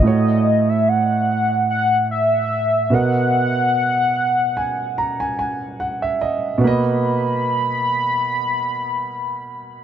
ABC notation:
X:1
M:4/4
L:1/16
Q:"Swing 16ths" 1/4=73
K:B
V:1 name="Soft synth lead"
d3 e f4 f2 e4 f2- | f12 z4 | b16 |]
V:2 name="Grand piano"
z16 | z6 g2 a g g2 f e d2 | z16 |]
V:3 name="Grand piano"
[=A,,=A,Fc]12- [A,,A,Fc]2 [B,,B,^Ad]2- | [B,,B,Ad]12- [B,,B,Ad]2 z2 | [B,,A,B,d]16 |]